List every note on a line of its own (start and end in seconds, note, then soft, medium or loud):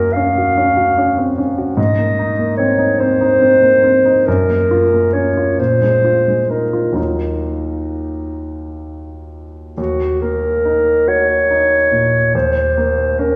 0.00 1.73 F#2 soft
0.00 1.80 A#3 soft
0.00 0.38 F#4 soft
0.00 0.14 A#4 medium
0.13 0.49 C#4 soft
0.13 1.50 F5 medium
0.38 0.70 F#4 soft
0.57 0.89 C#4 soft
0.77 1.09 F#4 soft
0.98 1.30 C#4 soft
1.18 1.38 C4 soft
1.38 1.70 C#4 soft
1.58 1.78 F#4 soft
1.77 4.22 G#2 medium
1.77 2.54 D#5 medium
1.98 2.30 A#3 soft
2.19 2.51 D#4 soft
2.39 2.71 A#3 soft
2.57 2.91 C4 soft
2.57 3.00 C#5 medium
2.79 3.12 D#4 soft
2.99 3.33 C4 soft
2.99 4.28 C5 medium
3.21 3.54 D#4 soft
3.41 3.75 C4 soft
3.63 3.83 A#3 soft
3.84 4.18 C4 soft
4.05 4.27 D#4 soft
4.26 5.55 F#2 medium
4.26 5.14 A#4 medium
4.50 4.84 A#3 soft
4.71 5.05 F4 soft
4.94 5.28 A#3 soft
5.13 5.49 C#4 soft
5.13 5.60 C#5 medium
5.37 5.59 F4 soft
5.59 6.94 A#2 soft
5.59 6.51 C5 medium
5.82 6.18 G#3 soft
6.05 6.41 F4 soft
6.28 6.64 G#3 soft
6.50 6.88 D#4 soft
6.50 6.97 A#4 soft
6.73 6.94 F4 soft
6.92 9.72 D#2 soft
6.92 9.73 F#3 soft
6.92 9.73 D#4 soft
6.92 9.32 D#4 soft
6.92 9.74 F4 soft
6.97 9.74 A#4 soft
9.77 12.29 D#2 soft
9.77 10.23 F#4 medium
10.21 10.92 A#3 soft
10.21 11.09 A#4 medium
10.65 11.33 D#4 soft
11.08 11.75 F#4 soft
11.08 12.33 C#5 medium
11.50 12.17 D#4 soft
11.91 12.34 A#2 soft
12.35 13.36 D#2 medium
12.35 13.21 C5 medium
12.77 13.36 A#3 soft
13.19 13.36 C#4 soft
13.19 13.36 A#4 medium